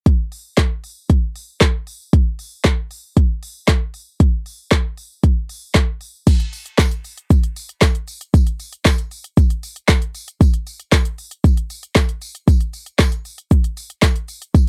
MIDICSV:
0, 0, Header, 1, 2, 480
1, 0, Start_track
1, 0, Tempo, 517241
1, 58, Time_signature, 4, 2, 24, 8
1, 13630, End_track
2, 0, Start_track
2, 0, Title_t, "Drums"
2, 57, Note_on_c, 9, 36, 112
2, 57, Note_on_c, 9, 42, 66
2, 150, Note_off_c, 9, 36, 0
2, 150, Note_off_c, 9, 42, 0
2, 296, Note_on_c, 9, 46, 63
2, 388, Note_off_c, 9, 46, 0
2, 531, Note_on_c, 9, 38, 89
2, 537, Note_on_c, 9, 36, 116
2, 537, Note_on_c, 9, 39, 104
2, 538, Note_on_c, 9, 42, 79
2, 624, Note_off_c, 9, 38, 0
2, 630, Note_off_c, 9, 36, 0
2, 630, Note_off_c, 9, 39, 0
2, 630, Note_off_c, 9, 42, 0
2, 777, Note_on_c, 9, 46, 78
2, 869, Note_off_c, 9, 46, 0
2, 1017, Note_on_c, 9, 42, 69
2, 1018, Note_on_c, 9, 36, 106
2, 1109, Note_off_c, 9, 42, 0
2, 1111, Note_off_c, 9, 36, 0
2, 1258, Note_on_c, 9, 46, 86
2, 1351, Note_off_c, 9, 46, 0
2, 1489, Note_on_c, 9, 38, 84
2, 1494, Note_on_c, 9, 42, 67
2, 1495, Note_on_c, 9, 39, 107
2, 1497, Note_on_c, 9, 36, 109
2, 1582, Note_off_c, 9, 38, 0
2, 1587, Note_off_c, 9, 42, 0
2, 1588, Note_off_c, 9, 39, 0
2, 1589, Note_off_c, 9, 36, 0
2, 1735, Note_on_c, 9, 46, 79
2, 1828, Note_off_c, 9, 46, 0
2, 1978, Note_on_c, 9, 36, 119
2, 1979, Note_on_c, 9, 42, 69
2, 2071, Note_off_c, 9, 36, 0
2, 2072, Note_off_c, 9, 42, 0
2, 2218, Note_on_c, 9, 46, 66
2, 2310, Note_off_c, 9, 46, 0
2, 2452, Note_on_c, 9, 38, 86
2, 2458, Note_on_c, 9, 36, 114
2, 2458, Note_on_c, 9, 39, 111
2, 2459, Note_on_c, 9, 42, 77
2, 2545, Note_off_c, 9, 38, 0
2, 2551, Note_off_c, 9, 36, 0
2, 2551, Note_off_c, 9, 39, 0
2, 2552, Note_off_c, 9, 42, 0
2, 2698, Note_on_c, 9, 46, 81
2, 2791, Note_off_c, 9, 46, 0
2, 2938, Note_on_c, 9, 42, 69
2, 2939, Note_on_c, 9, 36, 112
2, 3031, Note_off_c, 9, 42, 0
2, 3032, Note_off_c, 9, 36, 0
2, 3180, Note_on_c, 9, 46, 86
2, 3273, Note_off_c, 9, 46, 0
2, 3411, Note_on_c, 9, 38, 89
2, 3415, Note_on_c, 9, 42, 72
2, 3417, Note_on_c, 9, 36, 109
2, 3417, Note_on_c, 9, 39, 104
2, 3503, Note_off_c, 9, 38, 0
2, 3508, Note_off_c, 9, 42, 0
2, 3510, Note_off_c, 9, 36, 0
2, 3510, Note_off_c, 9, 39, 0
2, 3655, Note_on_c, 9, 46, 77
2, 3748, Note_off_c, 9, 46, 0
2, 3898, Note_on_c, 9, 36, 118
2, 3898, Note_on_c, 9, 42, 68
2, 3991, Note_off_c, 9, 36, 0
2, 3991, Note_off_c, 9, 42, 0
2, 4138, Note_on_c, 9, 46, 63
2, 4231, Note_off_c, 9, 46, 0
2, 4372, Note_on_c, 9, 38, 84
2, 4378, Note_on_c, 9, 36, 118
2, 4378, Note_on_c, 9, 39, 109
2, 4379, Note_on_c, 9, 42, 76
2, 4465, Note_off_c, 9, 38, 0
2, 4471, Note_off_c, 9, 36, 0
2, 4471, Note_off_c, 9, 39, 0
2, 4472, Note_off_c, 9, 42, 0
2, 4616, Note_on_c, 9, 46, 78
2, 4709, Note_off_c, 9, 46, 0
2, 4857, Note_on_c, 9, 42, 71
2, 4858, Note_on_c, 9, 36, 107
2, 4950, Note_off_c, 9, 42, 0
2, 4951, Note_off_c, 9, 36, 0
2, 5098, Note_on_c, 9, 46, 82
2, 5191, Note_off_c, 9, 46, 0
2, 5330, Note_on_c, 9, 38, 87
2, 5334, Note_on_c, 9, 42, 68
2, 5336, Note_on_c, 9, 39, 109
2, 5337, Note_on_c, 9, 36, 107
2, 5422, Note_off_c, 9, 38, 0
2, 5427, Note_off_c, 9, 42, 0
2, 5429, Note_off_c, 9, 36, 0
2, 5429, Note_off_c, 9, 39, 0
2, 5575, Note_on_c, 9, 46, 79
2, 5668, Note_off_c, 9, 46, 0
2, 5817, Note_on_c, 9, 49, 103
2, 5818, Note_on_c, 9, 36, 119
2, 5818, Note_on_c, 9, 82, 67
2, 5820, Note_on_c, 9, 54, 48
2, 5910, Note_off_c, 9, 36, 0
2, 5910, Note_off_c, 9, 49, 0
2, 5911, Note_off_c, 9, 82, 0
2, 5912, Note_off_c, 9, 54, 0
2, 5938, Note_on_c, 9, 42, 47
2, 5938, Note_on_c, 9, 82, 48
2, 6031, Note_off_c, 9, 42, 0
2, 6031, Note_off_c, 9, 82, 0
2, 6058, Note_on_c, 9, 46, 66
2, 6058, Note_on_c, 9, 82, 46
2, 6059, Note_on_c, 9, 54, 50
2, 6151, Note_off_c, 9, 46, 0
2, 6151, Note_off_c, 9, 82, 0
2, 6152, Note_off_c, 9, 54, 0
2, 6178, Note_on_c, 9, 42, 67
2, 6178, Note_on_c, 9, 82, 67
2, 6270, Note_off_c, 9, 42, 0
2, 6270, Note_off_c, 9, 82, 0
2, 6291, Note_on_c, 9, 38, 84
2, 6297, Note_on_c, 9, 36, 120
2, 6298, Note_on_c, 9, 39, 107
2, 6298, Note_on_c, 9, 82, 81
2, 6300, Note_on_c, 9, 54, 104
2, 6384, Note_off_c, 9, 38, 0
2, 6390, Note_off_c, 9, 36, 0
2, 6391, Note_off_c, 9, 39, 0
2, 6391, Note_off_c, 9, 82, 0
2, 6393, Note_off_c, 9, 54, 0
2, 6416, Note_on_c, 9, 42, 62
2, 6416, Note_on_c, 9, 82, 62
2, 6509, Note_off_c, 9, 42, 0
2, 6509, Note_off_c, 9, 82, 0
2, 6538, Note_on_c, 9, 46, 82
2, 6538, Note_on_c, 9, 82, 58
2, 6540, Note_on_c, 9, 54, 32
2, 6630, Note_off_c, 9, 46, 0
2, 6630, Note_off_c, 9, 82, 0
2, 6633, Note_off_c, 9, 54, 0
2, 6659, Note_on_c, 9, 42, 77
2, 6659, Note_on_c, 9, 82, 75
2, 6751, Note_off_c, 9, 42, 0
2, 6751, Note_off_c, 9, 82, 0
2, 6777, Note_on_c, 9, 82, 70
2, 6778, Note_on_c, 9, 36, 112
2, 6778, Note_on_c, 9, 54, 30
2, 6870, Note_off_c, 9, 82, 0
2, 6871, Note_off_c, 9, 36, 0
2, 6871, Note_off_c, 9, 54, 0
2, 6900, Note_on_c, 9, 42, 55
2, 6900, Note_on_c, 9, 82, 52
2, 6992, Note_off_c, 9, 42, 0
2, 6992, Note_off_c, 9, 82, 0
2, 7019, Note_on_c, 9, 46, 91
2, 7019, Note_on_c, 9, 54, 54
2, 7019, Note_on_c, 9, 82, 61
2, 7112, Note_off_c, 9, 46, 0
2, 7112, Note_off_c, 9, 54, 0
2, 7112, Note_off_c, 9, 82, 0
2, 7138, Note_on_c, 9, 42, 74
2, 7138, Note_on_c, 9, 82, 69
2, 7231, Note_off_c, 9, 42, 0
2, 7231, Note_off_c, 9, 82, 0
2, 7249, Note_on_c, 9, 38, 91
2, 7254, Note_on_c, 9, 82, 77
2, 7255, Note_on_c, 9, 39, 105
2, 7257, Note_on_c, 9, 36, 106
2, 7259, Note_on_c, 9, 54, 83
2, 7342, Note_off_c, 9, 38, 0
2, 7346, Note_off_c, 9, 82, 0
2, 7348, Note_off_c, 9, 39, 0
2, 7349, Note_off_c, 9, 36, 0
2, 7352, Note_off_c, 9, 54, 0
2, 7377, Note_on_c, 9, 42, 54
2, 7377, Note_on_c, 9, 82, 54
2, 7470, Note_off_c, 9, 42, 0
2, 7470, Note_off_c, 9, 82, 0
2, 7494, Note_on_c, 9, 46, 83
2, 7494, Note_on_c, 9, 82, 60
2, 7499, Note_on_c, 9, 54, 53
2, 7587, Note_off_c, 9, 46, 0
2, 7587, Note_off_c, 9, 82, 0
2, 7592, Note_off_c, 9, 54, 0
2, 7619, Note_on_c, 9, 42, 84
2, 7619, Note_on_c, 9, 82, 81
2, 7712, Note_off_c, 9, 42, 0
2, 7712, Note_off_c, 9, 82, 0
2, 7738, Note_on_c, 9, 36, 117
2, 7738, Note_on_c, 9, 82, 71
2, 7740, Note_on_c, 9, 54, 50
2, 7831, Note_off_c, 9, 36, 0
2, 7831, Note_off_c, 9, 82, 0
2, 7833, Note_off_c, 9, 54, 0
2, 7856, Note_on_c, 9, 42, 47
2, 7856, Note_on_c, 9, 82, 50
2, 7949, Note_off_c, 9, 42, 0
2, 7949, Note_off_c, 9, 82, 0
2, 7977, Note_on_c, 9, 46, 66
2, 7977, Note_on_c, 9, 82, 46
2, 7978, Note_on_c, 9, 54, 50
2, 8070, Note_off_c, 9, 46, 0
2, 8070, Note_off_c, 9, 82, 0
2, 8071, Note_off_c, 9, 54, 0
2, 8097, Note_on_c, 9, 42, 65
2, 8097, Note_on_c, 9, 82, 65
2, 8190, Note_off_c, 9, 42, 0
2, 8190, Note_off_c, 9, 82, 0
2, 8212, Note_on_c, 9, 38, 87
2, 8217, Note_on_c, 9, 36, 115
2, 8217, Note_on_c, 9, 54, 101
2, 8218, Note_on_c, 9, 39, 112
2, 8219, Note_on_c, 9, 82, 83
2, 8305, Note_off_c, 9, 38, 0
2, 8310, Note_off_c, 9, 36, 0
2, 8310, Note_off_c, 9, 54, 0
2, 8311, Note_off_c, 9, 39, 0
2, 8312, Note_off_c, 9, 82, 0
2, 8336, Note_on_c, 9, 42, 62
2, 8336, Note_on_c, 9, 82, 61
2, 8429, Note_off_c, 9, 42, 0
2, 8429, Note_off_c, 9, 82, 0
2, 8457, Note_on_c, 9, 46, 81
2, 8457, Note_on_c, 9, 82, 57
2, 8461, Note_on_c, 9, 54, 34
2, 8550, Note_off_c, 9, 46, 0
2, 8550, Note_off_c, 9, 82, 0
2, 8554, Note_off_c, 9, 54, 0
2, 8577, Note_on_c, 9, 42, 77
2, 8577, Note_on_c, 9, 82, 74
2, 8670, Note_off_c, 9, 42, 0
2, 8670, Note_off_c, 9, 82, 0
2, 8696, Note_on_c, 9, 82, 73
2, 8698, Note_on_c, 9, 36, 116
2, 8700, Note_on_c, 9, 54, 31
2, 8789, Note_off_c, 9, 82, 0
2, 8791, Note_off_c, 9, 36, 0
2, 8793, Note_off_c, 9, 54, 0
2, 8819, Note_on_c, 9, 42, 52
2, 8819, Note_on_c, 9, 82, 52
2, 8912, Note_off_c, 9, 42, 0
2, 8912, Note_off_c, 9, 82, 0
2, 8939, Note_on_c, 9, 46, 86
2, 8939, Note_on_c, 9, 54, 57
2, 8939, Note_on_c, 9, 82, 65
2, 9031, Note_off_c, 9, 54, 0
2, 9032, Note_off_c, 9, 46, 0
2, 9032, Note_off_c, 9, 82, 0
2, 9058, Note_on_c, 9, 42, 73
2, 9058, Note_on_c, 9, 82, 74
2, 9151, Note_off_c, 9, 42, 0
2, 9151, Note_off_c, 9, 82, 0
2, 9169, Note_on_c, 9, 38, 88
2, 9174, Note_on_c, 9, 82, 76
2, 9176, Note_on_c, 9, 36, 117
2, 9176, Note_on_c, 9, 39, 112
2, 9176, Note_on_c, 9, 54, 86
2, 9262, Note_off_c, 9, 38, 0
2, 9267, Note_off_c, 9, 82, 0
2, 9268, Note_off_c, 9, 39, 0
2, 9269, Note_off_c, 9, 36, 0
2, 9269, Note_off_c, 9, 54, 0
2, 9297, Note_on_c, 9, 42, 52
2, 9297, Note_on_c, 9, 82, 52
2, 9390, Note_off_c, 9, 42, 0
2, 9390, Note_off_c, 9, 82, 0
2, 9415, Note_on_c, 9, 46, 84
2, 9415, Note_on_c, 9, 82, 59
2, 9417, Note_on_c, 9, 54, 55
2, 9508, Note_off_c, 9, 46, 0
2, 9508, Note_off_c, 9, 82, 0
2, 9510, Note_off_c, 9, 54, 0
2, 9539, Note_on_c, 9, 42, 80
2, 9539, Note_on_c, 9, 82, 84
2, 9632, Note_off_c, 9, 42, 0
2, 9632, Note_off_c, 9, 82, 0
2, 9658, Note_on_c, 9, 36, 120
2, 9658, Note_on_c, 9, 54, 49
2, 9658, Note_on_c, 9, 82, 69
2, 9751, Note_off_c, 9, 36, 0
2, 9751, Note_off_c, 9, 54, 0
2, 9751, Note_off_c, 9, 82, 0
2, 9777, Note_on_c, 9, 42, 51
2, 9777, Note_on_c, 9, 82, 47
2, 9870, Note_off_c, 9, 42, 0
2, 9870, Note_off_c, 9, 82, 0
2, 9898, Note_on_c, 9, 54, 50
2, 9900, Note_on_c, 9, 46, 65
2, 9900, Note_on_c, 9, 82, 46
2, 9991, Note_off_c, 9, 54, 0
2, 9992, Note_off_c, 9, 46, 0
2, 9992, Note_off_c, 9, 82, 0
2, 10018, Note_on_c, 9, 42, 66
2, 10018, Note_on_c, 9, 82, 67
2, 10111, Note_off_c, 9, 42, 0
2, 10111, Note_off_c, 9, 82, 0
2, 10133, Note_on_c, 9, 38, 88
2, 10138, Note_on_c, 9, 36, 121
2, 10138, Note_on_c, 9, 54, 102
2, 10139, Note_on_c, 9, 39, 112
2, 10140, Note_on_c, 9, 82, 79
2, 10226, Note_off_c, 9, 38, 0
2, 10231, Note_off_c, 9, 36, 0
2, 10231, Note_off_c, 9, 54, 0
2, 10232, Note_off_c, 9, 39, 0
2, 10233, Note_off_c, 9, 82, 0
2, 10257, Note_on_c, 9, 42, 62
2, 10257, Note_on_c, 9, 82, 63
2, 10350, Note_off_c, 9, 42, 0
2, 10350, Note_off_c, 9, 82, 0
2, 10378, Note_on_c, 9, 46, 82
2, 10378, Note_on_c, 9, 82, 59
2, 10471, Note_off_c, 9, 46, 0
2, 10471, Note_off_c, 9, 82, 0
2, 10498, Note_on_c, 9, 42, 78
2, 10498, Note_on_c, 9, 82, 76
2, 10591, Note_off_c, 9, 42, 0
2, 10591, Note_off_c, 9, 82, 0
2, 10618, Note_on_c, 9, 36, 109
2, 10618, Note_on_c, 9, 54, 29
2, 10618, Note_on_c, 9, 82, 73
2, 10710, Note_off_c, 9, 82, 0
2, 10711, Note_off_c, 9, 36, 0
2, 10711, Note_off_c, 9, 54, 0
2, 10740, Note_on_c, 9, 42, 51
2, 10740, Note_on_c, 9, 82, 52
2, 10832, Note_off_c, 9, 42, 0
2, 10832, Note_off_c, 9, 82, 0
2, 10857, Note_on_c, 9, 54, 54
2, 10859, Note_on_c, 9, 46, 86
2, 10859, Note_on_c, 9, 82, 65
2, 10950, Note_off_c, 9, 54, 0
2, 10952, Note_off_c, 9, 46, 0
2, 10952, Note_off_c, 9, 82, 0
2, 10978, Note_on_c, 9, 42, 69
2, 10978, Note_on_c, 9, 82, 71
2, 11071, Note_off_c, 9, 42, 0
2, 11071, Note_off_c, 9, 82, 0
2, 11090, Note_on_c, 9, 38, 91
2, 11095, Note_on_c, 9, 82, 75
2, 11096, Note_on_c, 9, 36, 118
2, 11096, Note_on_c, 9, 39, 114
2, 11097, Note_on_c, 9, 54, 90
2, 11183, Note_off_c, 9, 38, 0
2, 11188, Note_off_c, 9, 82, 0
2, 11189, Note_off_c, 9, 36, 0
2, 11189, Note_off_c, 9, 39, 0
2, 11190, Note_off_c, 9, 54, 0
2, 11218, Note_on_c, 9, 42, 55
2, 11218, Note_on_c, 9, 82, 51
2, 11311, Note_off_c, 9, 42, 0
2, 11311, Note_off_c, 9, 82, 0
2, 11336, Note_on_c, 9, 46, 84
2, 11336, Note_on_c, 9, 82, 59
2, 11338, Note_on_c, 9, 54, 57
2, 11429, Note_off_c, 9, 46, 0
2, 11429, Note_off_c, 9, 82, 0
2, 11430, Note_off_c, 9, 54, 0
2, 11459, Note_on_c, 9, 42, 79
2, 11459, Note_on_c, 9, 82, 80
2, 11552, Note_off_c, 9, 42, 0
2, 11552, Note_off_c, 9, 82, 0
2, 11577, Note_on_c, 9, 54, 49
2, 11578, Note_on_c, 9, 36, 117
2, 11578, Note_on_c, 9, 82, 66
2, 11670, Note_off_c, 9, 54, 0
2, 11671, Note_off_c, 9, 36, 0
2, 11671, Note_off_c, 9, 82, 0
2, 11697, Note_on_c, 9, 42, 47
2, 11697, Note_on_c, 9, 82, 52
2, 11790, Note_off_c, 9, 42, 0
2, 11790, Note_off_c, 9, 82, 0
2, 11817, Note_on_c, 9, 46, 65
2, 11817, Note_on_c, 9, 82, 49
2, 11819, Note_on_c, 9, 54, 49
2, 11910, Note_off_c, 9, 46, 0
2, 11910, Note_off_c, 9, 82, 0
2, 11912, Note_off_c, 9, 54, 0
2, 11937, Note_on_c, 9, 42, 66
2, 11937, Note_on_c, 9, 82, 66
2, 12030, Note_off_c, 9, 42, 0
2, 12030, Note_off_c, 9, 82, 0
2, 12051, Note_on_c, 9, 38, 85
2, 12057, Note_on_c, 9, 36, 126
2, 12057, Note_on_c, 9, 39, 112
2, 12058, Note_on_c, 9, 54, 102
2, 12058, Note_on_c, 9, 82, 79
2, 12144, Note_off_c, 9, 38, 0
2, 12150, Note_off_c, 9, 36, 0
2, 12150, Note_off_c, 9, 39, 0
2, 12151, Note_off_c, 9, 54, 0
2, 12151, Note_off_c, 9, 82, 0
2, 12175, Note_on_c, 9, 42, 64
2, 12175, Note_on_c, 9, 82, 62
2, 12268, Note_off_c, 9, 42, 0
2, 12268, Note_off_c, 9, 82, 0
2, 12297, Note_on_c, 9, 46, 80
2, 12297, Note_on_c, 9, 82, 58
2, 12300, Note_on_c, 9, 54, 32
2, 12390, Note_off_c, 9, 46, 0
2, 12390, Note_off_c, 9, 82, 0
2, 12393, Note_off_c, 9, 54, 0
2, 12417, Note_on_c, 9, 42, 76
2, 12417, Note_on_c, 9, 82, 74
2, 12510, Note_off_c, 9, 42, 0
2, 12510, Note_off_c, 9, 82, 0
2, 12537, Note_on_c, 9, 82, 73
2, 12538, Note_on_c, 9, 36, 110
2, 12630, Note_off_c, 9, 82, 0
2, 12631, Note_off_c, 9, 36, 0
2, 12660, Note_on_c, 9, 42, 53
2, 12660, Note_on_c, 9, 82, 53
2, 12753, Note_off_c, 9, 42, 0
2, 12753, Note_off_c, 9, 82, 0
2, 12777, Note_on_c, 9, 54, 54
2, 12780, Note_on_c, 9, 46, 88
2, 12780, Note_on_c, 9, 82, 61
2, 12870, Note_off_c, 9, 54, 0
2, 12872, Note_off_c, 9, 46, 0
2, 12872, Note_off_c, 9, 82, 0
2, 12899, Note_on_c, 9, 42, 73
2, 12899, Note_on_c, 9, 82, 71
2, 12992, Note_off_c, 9, 42, 0
2, 12992, Note_off_c, 9, 82, 0
2, 13009, Note_on_c, 9, 38, 86
2, 13014, Note_on_c, 9, 82, 76
2, 13016, Note_on_c, 9, 36, 109
2, 13016, Note_on_c, 9, 39, 112
2, 13017, Note_on_c, 9, 54, 92
2, 13102, Note_off_c, 9, 38, 0
2, 13107, Note_off_c, 9, 82, 0
2, 13108, Note_off_c, 9, 39, 0
2, 13109, Note_off_c, 9, 36, 0
2, 13110, Note_off_c, 9, 54, 0
2, 13137, Note_on_c, 9, 42, 53
2, 13137, Note_on_c, 9, 82, 54
2, 13230, Note_off_c, 9, 42, 0
2, 13230, Note_off_c, 9, 82, 0
2, 13255, Note_on_c, 9, 46, 85
2, 13255, Note_on_c, 9, 82, 62
2, 13257, Note_on_c, 9, 54, 55
2, 13348, Note_off_c, 9, 46, 0
2, 13348, Note_off_c, 9, 82, 0
2, 13350, Note_off_c, 9, 54, 0
2, 13379, Note_on_c, 9, 42, 82
2, 13379, Note_on_c, 9, 82, 83
2, 13472, Note_off_c, 9, 42, 0
2, 13472, Note_off_c, 9, 82, 0
2, 13498, Note_on_c, 9, 36, 118
2, 13498, Note_on_c, 9, 82, 68
2, 13499, Note_on_c, 9, 54, 49
2, 13590, Note_off_c, 9, 36, 0
2, 13591, Note_off_c, 9, 82, 0
2, 13592, Note_off_c, 9, 54, 0
2, 13630, End_track
0, 0, End_of_file